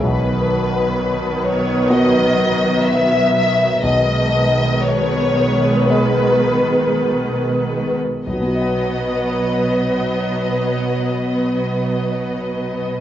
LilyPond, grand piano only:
\new Staff \with { instrumentName = "Grand piano" } { \time 4/4 \key b \major \tempo 4 = 54 b,,2 <b fis' fis''>2 | b,,2 <b gis' dis''>2 | <b,, b, b fis' dis'' fis''>1 | }